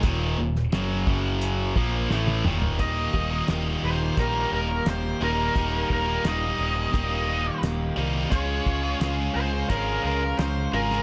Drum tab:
HH |x---x---x-------|x---x---x---x---|x---x---x---x---|x---x---x---x---|
SD |---oo-------o---|----o-------o---|----o-------o---|----o-------o--o|
T1 |-------------o--|----------------|----------------|----------------|
T2 |--------------o-|----------------|----------------|----------------|
FT |---------------o|----------------|----------------|----------------|
BD |o-----o---o-----|o-o-----o-------|o-o-----o-------|o-o-----o-------|